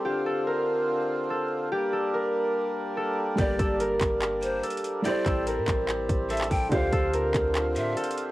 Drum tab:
HH |------------------------------------------------|------------------------------------------------|x-----x-----x-----x-----x-----x-----x-x-x-x-----|x-----x-----x-----x-----x-----x-----x-x-x-o-----|
CP |------------------------------------------------|------------------------------------------------|------------------x-----x-----------------------|------x-----------x-----x--------------x--------|
BD |------------------------------------------------|------------------------------------------------|o-----o-----------o-----------------------------|------o-----------o-----------o-----------o-----|

HH |x-----x-----x-----x-----x-----x-----x-x-x-x-----|
CP |------------------x-----x-----------------------|
BD |o-----o-----------o-----------------------------|